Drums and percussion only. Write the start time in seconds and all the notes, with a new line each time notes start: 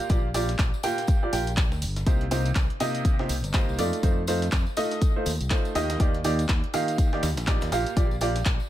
0.09 kick, closed hi-hat, tambourine
0.34 closed hi-hat, open hi-hat, tambourine
0.48 snare, closed hi-hat, tambourine
0.59 kick, snare, clap, closed hi-hat, tambourine
0.74 tambourine
0.83 closed hi-hat, open hi-hat, tambourine
0.98 snare, closed hi-hat, tambourine
1.07 kick, closed hi-hat, tambourine
1.33 open hi-hat, tambourine
1.47 closed hi-hat, tambourine
1.57 kick, snare, clap, closed hi-hat, tambourine
1.72 snare, tambourine
1.82 closed hi-hat, open hi-hat, tambourine
1.96 snare, closed hi-hat, tambourine
2.06 kick, closed hi-hat, tambourine
2.21 closed hi-hat
2.31 closed hi-hat, open hi-hat, tambourine
2.46 closed hi-hat, tambourine
2.55 kick, snare, clap, closed hi-hat, tambourine
2.70 closed hi-hat
2.80 closed hi-hat, open hi-hat, tambourine
2.95 closed hi-hat, tambourine
3.05 kick, closed hi-hat, tambourine
3.19 snare
3.29 closed hi-hat, open hi-hat, tambourine
3.44 closed hi-hat, tambourine
3.54 kick, snare, clap, closed hi-hat, tambourine
3.69 tambourine
3.79 closed hi-hat, open hi-hat, tambourine
3.93 closed hi-hat, tambourine
4.03 kick, closed hi-hat, tambourine
4.27 closed hi-hat, open hi-hat, tambourine
4.42 snare, closed hi-hat, tambourine
4.52 kick, snare, clap, closed hi-hat, tambourine
4.66 tambourine
4.77 closed hi-hat, open hi-hat, tambourine
4.91 snare, closed hi-hat, tambourine
5.02 kick, closed hi-hat, tambourine
5.26 open hi-hat, tambourine
5.41 closed hi-hat, tambourine
5.50 kick, snare, clap, closed hi-hat, tambourine
5.65 closed hi-hat, tambourine
5.75 closed hi-hat, open hi-hat, tambourine
5.90 snare, closed hi-hat, tambourine
6.00 kick, closed hi-hat, tambourine
6.14 closed hi-hat
6.24 closed hi-hat, open hi-hat, tambourine
6.39 closed hi-hat, tambourine
6.49 kick, snare, clap, closed hi-hat
6.64 closed hi-hat
6.74 closed hi-hat, open hi-hat, tambourine
6.88 closed hi-hat, tambourine
6.98 kick, closed hi-hat, tambourine
7.13 snare
7.23 snare, closed hi-hat, open hi-hat, tambourine
7.37 snare, closed hi-hat, tambourine
7.47 kick, snare, clap, closed hi-hat, tambourine
7.61 snare, closed hi-hat, tambourine
7.72 closed hi-hat, open hi-hat, tambourine
7.86 closed hi-hat, tambourine
7.97 kick, closed hi-hat, tambourine
8.11 tambourine
8.21 closed hi-hat, open hi-hat, tambourine
8.35 snare, closed hi-hat, tambourine
8.45 kick, snare, clap, closed hi-hat, tambourine
8.60 tambourine